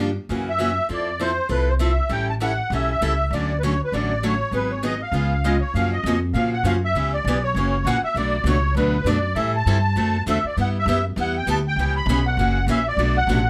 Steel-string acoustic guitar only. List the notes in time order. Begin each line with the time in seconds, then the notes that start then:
0.29 C#3 E3 A#3 C#4 F#4
0.59 C#3 E3 A#3 C#4 F#4
0.89 F3 C4 E4 A4
1.20 F3 C4 E4 A4
1.49 F3 C4 E4 A4
1.79 F3 C4 E4 A4
2.09 E3 G3 C#4 E4 A4
2.40 E3 G3 C#4 E4 A4
2.72 E3 G3 C#4 E4 A4
3.02 E3 G3 C#4 E4 A4
3.33 D3 F#3 A3 C#4 F#4
3.63 D3 F#3 A3 C#4 F#4
3.93 D3 F#3 A3 C#4 F#4
4.23 D3 F#3 A3 C#4 F#4
4.52 D#3 F#3 B3 D#4 G#4
4.83 D#3 F#3 B3 D#4 G#4
5.13 C#3 G#3 B3 F4 G#4
5.44 C#3 G#3 B3 F4 G#4
5.75 C#3 F3 A#3 C#4 F#4
6.06 C#3 F3 A#3 C#4 F#4
6.34 C#3 F3 A#3 C#4 F#4
6.64 C#3 F3 A#3 C#4 F#4
6.95 C#3 E3 B3 C#4 G4
7.28 C#3 E3 B3 C#4 G4
7.56 C#3 E3 A#3 C#4 F#4
7.87 C#3 E3 A#3 C#4 F#4
8.16 B2 F#3 A3 D4 F#4
8.46 B2 F#3 A3 D4 F#4
8.77 B2 F#3 A3 D4 F#4
9.06 B2 F#3 A3 D4 F#4
9.36 E3 G3 C4 E4 A4
9.67 E3 G3 C4 E4 A4
9.96 D3 A3 C4 F#4 A4
10.27 D3 A3 C4 F#4 A4
10.57 G3 B3 E4 G4
10.88 G3 B3 E4 G4
11.17 G3 B3 E4 G4
11.47 G3 B3 E4 G4
11.79 C#3 E3 B3 C#4 G4
12.09 C#3 E3 B3 C#4 G4
12.39 C#3 E3 A#3 C#4 F#4
12.68 C#3 E3 A#3 C#4 F#4
12.99 B2 F#3 A3 D4 F#4
13.29 B2 F#3 A3 D4 F#4